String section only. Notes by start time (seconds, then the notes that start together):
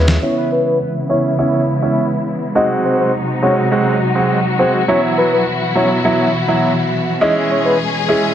0.22 C#3 E3 G#3 B3 E4
2.55 C3 F#3 D#4 F#4
4.88 B2 E3 E4
7.21 G#3 C#4 G#4